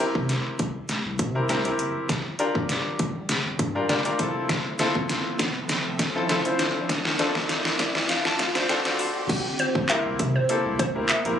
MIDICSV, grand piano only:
0, 0, Header, 1, 2, 480
1, 0, Start_track
1, 0, Tempo, 600000
1, 1675, Time_signature, 4, 2, 24, 8
1, 9115, End_track
2, 0, Start_track
2, 0, Title_t, "Grand piano"
2, 0, Program_c, 0, 0
2, 0, Note_on_c, 0, 60, 86
2, 0, Note_on_c, 0, 64, 80
2, 0, Note_on_c, 0, 67, 81
2, 0, Note_on_c, 0, 70, 98
2, 540, Note_off_c, 0, 60, 0
2, 541, Note_off_c, 0, 64, 0
2, 542, Note_off_c, 0, 67, 0
2, 542, Note_off_c, 0, 70, 0
2, 1080, Note_on_c, 0, 60, 85
2, 1082, Note_on_c, 0, 64, 75
2, 1083, Note_on_c, 0, 67, 76
2, 1084, Note_on_c, 0, 70, 97
2, 1145, Note_off_c, 0, 60, 0
2, 1146, Note_off_c, 0, 64, 0
2, 1146, Note_off_c, 0, 67, 0
2, 1147, Note_off_c, 0, 70, 0
2, 1193, Note_on_c, 0, 60, 91
2, 1195, Note_on_c, 0, 64, 83
2, 1196, Note_on_c, 0, 67, 83
2, 1197, Note_on_c, 0, 70, 101
2, 1266, Note_off_c, 0, 60, 0
2, 1267, Note_off_c, 0, 64, 0
2, 1267, Note_off_c, 0, 67, 0
2, 1268, Note_off_c, 0, 70, 0
2, 1320, Note_on_c, 0, 60, 81
2, 1322, Note_on_c, 0, 64, 78
2, 1323, Note_on_c, 0, 67, 80
2, 1325, Note_on_c, 0, 70, 94
2, 1655, Note_off_c, 0, 60, 0
2, 1655, Note_off_c, 0, 64, 0
2, 1656, Note_off_c, 0, 67, 0
2, 1657, Note_off_c, 0, 70, 0
2, 1913, Note_on_c, 0, 62, 88
2, 1915, Note_on_c, 0, 65, 83
2, 1916, Note_on_c, 0, 67, 85
2, 1917, Note_on_c, 0, 70, 99
2, 2461, Note_off_c, 0, 62, 0
2, 2461, Note_off_c, 0, 65, 0
2, 2462, Note_off_c, 0, 67, 0
2, 2463, Note_off_c, 0, 70, 0
2, 3000, Note_on_c, 0, 62, 86
2, 3002, Note_on_c, 0, 65, 82
2, 3003, Note_on_c, 0, 67, 81
2, 3005, Note_on_c, 0, 70, 98
2, 3065, Note_off_c, 0, 62, 0
2, 3066, Note_off_c, 0, 65, 0
2, 3066, Note_off_c, 0, 67, 0
2, 3067, Note_off_c, 0, 70, 0
2, 3113, Note_on_c, 0, 62, 96
2, 3115, Note_on_c, 0, 65, 86
2, 3115, Note_on_c, 0, 67, 87
2, 3117, Note_on_c, 0, 70, 102
2, 3186, Note_off_c, 0, 62, 0
2, 3187, Note_off_c, 0, 65, 0
2, 3187, Note_off_c, 0, 67, 0
2, 3188, Note_off_c, 0, 70, 0
2, 3240, Note_on_c, 0, 62, 86
2, 3242, Note_on_c, 0, 65, 80
2, 3243, Note_on_c, 0, 67, 80
2, 3244, Note_on_c, 0, 70, 99
2, 3343, Note_off_c, 0, 65, 0
2, 3352, Note_on_c, 0, 60, 91
2, 3354, Note_off_c, 0, 62, 0
2, 3354, Note_on_c, 0, 64, 83
2, 3355, Note_off_c, 0, 67, 0
2, 3355, Note_on_c, 0, 65, 83
2, 3356, Note_off_c, 0, 70, 0
2, 3357, Note_on_c, 0, 69, 99
2, 3743, Note_off_c, 0, 60, 0
2, 3744, Note_off_c, 0, 64, 0
2, 3745, Note_off_c, 0, 65, 0
2, 3746, Note_off_c, 0, 69, 0
2, 3834, Note_on_c, 0, 60, 90
2, 3836, Note_on_c, 0, 64, 84
2, 3837, Note_on_c, 0, 65, 86
2, 3838, Note_on_c, 0, 69, 103
2, 4381, Note_off_c, 0, 60, 0
2, 4382, Note_off_c, 0, 64, 0
2, 4382, Note_off_c, 0, 65, 0
2, 4383, Note_off_c, 0, 69, 0
2, 4921, Note_on_c, 0, 60, 88
2, 4922, Note_on_c, 0, 64, 82
2, 4924, Note_on_c, 0, 65, 86
2, 4925, Note_on_c, 0, 69, 99
2, 4985, Note_off_c, 0, 60, 0
2, 4986, Note_off_c, 0, 64, 0
2, 4987, Note_off_c, 0, 65, 0
2, 4987, Note_off_c, 0, 69, 0
2, 5034, Note_on_c, 0, 60, 99
2, 5035, Note_on_c, 0, 64, 89
2, 5037, Note_on_c, 0, 65, 89
2, 5039, Note_on_c, 0, 69, 109
2, 5106, Note_off_c, 0, 60, 0
2, 5107, Note_off_c, 0, 64, 0
2, 5108, Note_off_c, 0, 65, 0
2, 5109, Note_off_c, 0, 69, 0
2, 5162, Note_on_c, 0, 60, 90
2, 5163, Note_on_c, 0, 64, 79
2, 5165, Note_on_c, 0, 65, 80
2, 5166, Note_on_c, 0, 72, 95
2, 5495, Note_off_c, 0, 60, 0
2, 5496, Note_off_c, 0, 64, 0
2, 5497, Note_off_c, 0, 65, 0
2, 5497, Note_off_c, 0, 72, 0
2, 5754, Note_on_c, 0, 60, 93
2, 5756, Note_on_c, 0, 62, 83
2, 5756, Note_on_c, 0, 65, 86
2, 5758, Note_on_c, 0, 69, 104
2, 6236, Note_on_c, 0, 74, 74
2, 6301, Note_off_c, 0, 60, 0
2, 6302, Note_off_c, 0, 62, 0
2, 6302, Note_off_c, 0, 65, 0
2, 6303, Note_off_c, 0, 69, 0
2, 6459, Note_off_c, 0, 74, 0
2, 6476, Note_on_c, 0, 77, 75
2, 6594, Note_off_c, 0, 77, 0
2, 6604, Note_on_c, 0, 81, 78
2, 6708, Note_off_c, 0, 81, 0
2, 6717, Note_on_c, 0, 77, 75
2, 6842, Note_on_c, 0, 60, 92
2, 6843, Note_on_c, 0, 62, 83
2, 6845, Note_on_c, 0, 65, 87
2, 6846, Note_on_c, 0, 72, 101
2, 6906, Note_off_c, 0, 60, 0
2, 6906, Note_off_c, 0, 62, 0
2, 6907, Note_off_c, 0, 65, 0
2, 6908, Note_off_c, 0, 72, 0
2, 6939, Note_off_c, 0, 77, 0
2, 6955, Note_on_c, 0, 60, 101
2, 6957, Note_on_c, 0, 62, 88
2, 6958, Note_on_c, 0, 65, 89
2, 6958, Note_on_c, 0, 79, 77
2, 6959, Note_on_c, 0, 69, 106
2, 7027, Note_off_c, 0, 60, 0
2, 7028, Note_off_c, 0, 62, 0
2, 7029, Note_off_c, 0, 65, 0
2, 7029, Note_off_c, 0, 69, 0
2, 7075, Note_off_c, 0, 79, 0
2, 7083, Note_on_c, 0, 60, 92
2, 7084, Note_on_c, 0, 62, 82
2, 7084, Note_on_c, 0, 81, 73
2, 7085, Note_on_c, 0, 65, 83
2, 7087, Note_on_c, 0, 69, 96
2, 7188, Note_off_c, 0, 81, 0
2, 7196, Note_on_c, 0, 84, 79
2, 7416, Note_off_c, 0, 60, 0
2, 7416, Note_off_c, 0, 62, 0
2, 7417, Note_off_c, 0, 65, 0
2, 7418, Note_off_c, 0, 69, 0
2, 7419, Note_off_c, 0, 84, 0
2, 7915, Note_on_c, 0, 58, 85
2, 7916, Note_on_c, 0, 60, 81
2, 7917, Note_on_c, 0, 64, 79
2, 7918, Note_on_c, 0, 67, 77
2, 7919, Note_on_c, 0, 70, 96
2, 8188, Note_off_c, 0, 58, 0
2, 8189, Note_off_c, 0, 60, 0
2, 8189, Note_off_c, 0, 64, 0
2, 8190, Note_off_c, 0, 67, 0
2, 8190, Note_off_c, 0, 70, 0
2, 8395, Note_on_c, 0, 58, 77
2, 8396, Note_on_c, 0, 60, 68
2, 8397, Note_on_c, 0, 64, 72
2, 8398, Note_on_c, 0, 67, 67
2, 8399, Note_on_c, 0, 69, 86
2, 8601, Note_off_c, 0, 58, 0
2, 8601, Note_off_c, 0, 60, 0
2, 8601, Note_off_c, 0, 64, 0
2, 8602, Note_off_c, 0, 67, 0
2, 8602, Note_off_c, 0, 69, 0
2, 8762, Note_on_c, 0, 58, 75
2, 8763, Note_on_c, 0, 60, 68
2, 8763, Note_on_c, 0, 64, 71
2, 8764, Note_on_c, 0, 67, 71
2, 8766, Note_on_c, 0, 70, 83
2, 8891, Note_off_c, 0, 58, 0
2, 8892, Note_off_c, 0, 60, 0
2, 8892, Note_off_c, 0, 64, 0
2, 8893, Note_off_c, 0, 67, 0
2, 8893, Note_off_c, 0, 70, 0
2, 9001, Note_on_c, 0, 58, 81
2, 9003, Note_on_c, 0, 60, 72
2, 9003, Note_on_c, 0, 64, 74
2, 9004, Note_on_c, 0, 67, 71
2, 9005, Note_on_c, 0, 70, 88
2, 9115, Note_off_c, 0, 58, 0
2, 9115, Note_off_c, 0, 60, 0
2, 9115, Note_off_c, 0, 64, 0
2, 9115, Note_off_c, 0, 67, 0
2, 9115, Note_off_c, 0, 70, 0
2, 9115, End_track
0, 0, End_of_file